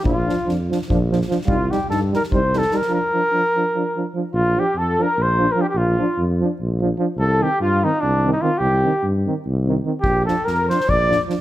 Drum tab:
SD |--o-o-oo--oooo|--o-o-oo--oooo|--------------|--------------|
BD |o-------o-----|o-------o-----|--------------|--------------|

SD |--------------|--------------|--------------|--o-o-oo--o-o-|
BD |--------------|--------------|--------------|o-------o-----|